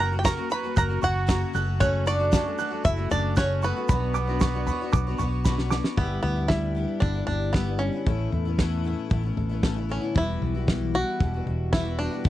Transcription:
Already playing: F#1 A#5 C#6
0.00 F#3 A#3 C#4 F#4 A#4 A#5 F#6
0.12 F#3 A#3 C#4 F#4
0.18 G4 G5
0.24 F#2 C#3 F#3 A#3 C#4 F#4 A#4 A#5 C#6, kick, snare, shaker
0.37 F#3 A#3 C#4 F#4
0.50 F#3 A#3 C#4 F#4 B4 A#5 B5, shaker
0.63 F#3 A#3 C#4 F#4
0.76 F#1 A#4 A#5 F#6, kick, floor tom, shaker
0.89 F#3 A#3 C#4 F#4
1.01 F#1 F#3 A#3 C#4 F#4 F#5 C#6, floor tom, shaker
1.27 F#2 C#3 F#3 A#3 C#4 F#4 A#5, kick, snare, shaker
1.53 F#1 F#3 A3 C#4 F#4 F#6, shaker
1.80 F#2 C#3 F#3 A3 C#4 F#4 C#5 F#6, kick, floor tom, shaker
2.06 F#3 A3 C#4 D4 F#4 D5 C#6, shaker
2.19 F#3 A3 C#4 F#4
2.32 F#2 C#3 F#3 A3 C#4 F#4 A5, kick, snare, shaker
2.45 F#3 A3 C#4 F#4
2.58 F#3 A3 C#4 F#4 F#6, shaker
2.70 F#3 A3 C#4 F#4
2.85 F#1 E4 E5, kick, floor tom, shaker
2.96 F#3 A3 C#4 F#4
3.10 F#1 F#3 A3 C#4 D4 F#4 D5 A5, floor tom, shaker
3.36 F#2 C#3 F#3 A3 C#4 F#4 C#5 F#6, kick, snare, shaker
3.62 F#3 A3 B3 C#4 F#4 B4 C#6, shaker
3.76 F#3 A3 C#4 F#4
3.89 B1 B2 F#3 B3 D4 F#4 C#5 B5, kick, floor tom, shaker
4.14 B3 D4 F#4 C#5 D6, shaker
4.27 B3 D4 F#4 C#5
4.40 B2 F#3 B3 D4 F#4 C#5 C#6, kick, snare, shaker
4.54 B3 D4 F#4 C#5
4.67 B3 D4 F#4 B5, floor tom, shaker
4.71 C#5
4.81 B3 D4 F#4 C#5
4.93 B1 D6, kick, floor tom, shaker
5.07 B3 D4 F#4 C#5
5.18 B1 B3 D4 F#4 C#6, floor tom, shaker
5.23 C#5
5.45 B2 F#3 B3 D4 F#4 C#5 B5, kick, snare, shaker
5.58 snare
5.71 B3 D4 F#4 C#5 D6, snare, shaker
5.84 snare
5.97 G1 G2 G3 B3 D4 E4 G4, kick, floor tom
6.23 D2 B3 E4, floor tom
6.36 B3 D4 E4
6.48 G3 B3 D4 E4, kick, snare
6.75 G3 B3 D4 E4
7.00 G1 D3 G3 B3 D4 E4, kick, floor tom
7.13 B3 D4 E4
7.27 G1 D4 G4, floor tom
7.53 G3 B3 D4 E4, kick, snare
7.66 B3 D4 E4
7.79 G3 B3 C#4 D4 E4
7.93 B3 D4 E4
8.06 A1 A2 A3 B3 C#4 E4 A4, kick, floor tom
8.32 E2 E4, floor tom
8.45 B3 C#4 E4
8.58 A2 E3 A3 B3 C#4 E4 A4, kick, snare
8.84 A3 B3 C#4 E4
9.10 A1 A2 A3 B3 C#4 E4, kick, floor tom
9.23 B3 C#4 E4
9.37 A1 A4, floor tom
9.49 B3 C#4 E4
9.63 A2 C#3 A3 B3 C#4 E4, kick, snare
9.76 B3 C#4 E4
9.89 D3 A3 B3 C#4 E4
10.02 B3 C#4 E4
10.15 E1 E2 E3 G3 B3 E4 F#4, kick, floor tom
10.41 B1 B3, floor tom
10.54 G3 B3 E4 F#4
10.67 E2 E3 G3 B3 E4 F#4, kick, snare
10.94 G3 B3 E4 F#4
11.20 E1 B2 G3 B3 E4 F#4, kick, floor tom
11.33 G3 B3 E4 F#4
11.46 E1 F#4, floor tom
11.72 E2 E3 G3 B3 E4 F#4, kick, snare
11.85 G3 B3 E4 F#4
11.98 G3 B3 D4 E4 F#4
12.11 G3 B3 E4 F#4
12.24 F#1 F#2 F#3 B3 D4 F#4, kick, floor tom

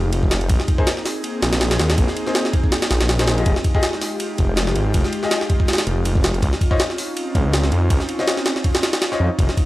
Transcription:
Already playing: F1 G#3 D#4 F4 G4
0.13 F1, ride
0.23 kick
0.31 snare, ride
0.41 F1, ride
0.49 A#1 A#3 C4 G#4, kick, ride
0.60 snare
0.68 kick, ride
0.78 D#4 G#4 A#4 C5, kick
0.87 snare, ride
0.97 snare
1.06 snare, open hi-hat
1.24 ride
1.42 A#1, snare, ride
1.53 snare, ride
1.61 snare, ride
1.71 snare, ride
1.79 D#2, snare, ride
1.90 snare, ride
1.98 A#1, kick, ride
2.08 snare
2.17 ride
2.27 D#4 G#4 A#4 C5, snare
2.35 snare, ride
2.45 snare
2.53 kick, ride
2.64 kick
2.72 snare, ride
2.82 snare, ride
2.91 A#1, snare, ride
3.01 snare, ride
3.09 snare, ride
3.19 D#4 G#4 A#4 C5, snare, ride
3.27 snare, ride
3.38 F4 G4 G#4 D#5, ride
3.46 F1 G#3 F4 G4, kick, ride
3.56 snare
3.64 kick, ride
3.75 F4 G4 G#4 D#5, kick
3.83 snare, ride
3.93 snare
4.01 snare, open hi-hat
4.20 ride
4.38 F1, kick, ride
4.57 snare, ride
4.67 snare
4.76 G#1, ride
4.94 F1, kick, ride
5.04 snare
5.13 ride
5.23 F4 G4 G#4 D#5, snare
5.31 snare, ride
5.41 snare
5.50 kick, ride
5.60 kick
5.68 snare, ride
5.73 snare, ride
5.78 snare, ride
5.87 F1, ride
6.05 F1, ride
6.15 kick
6.24 snare, ride
6.34 F1, ride
6.42 C#2 C4 C#4 D#4, kick, ride
6.53 snare
6.61 kick, ride
6.71 F4 C5 C#5 D#5, kick
6.80 snare, ride
6.90 snare
6.98 open hi-hat
7.17 ride
7.35 C#2, kick, ride
7.53 snare, ride
7.63 snare
7.72 F2, ride
7.90 C#2, kick, ride
8.00 snare
8.09 ride
8.19 F4 C5 C#5 D#5, snare
8.27 snare, ride
8.37 snare
8.46 snare, ride
8.56 snare
8.64 kick, ride
8.75 snare, ride
8.83 snare, ride
8.93 snare, ride
9.02 snare, ride
9.12 F4 C5 C#5 D#5, snare
9.20 F2
9.39 F1 G#3 G4, kick, ride
9.49 snare
9.57 kick, ride

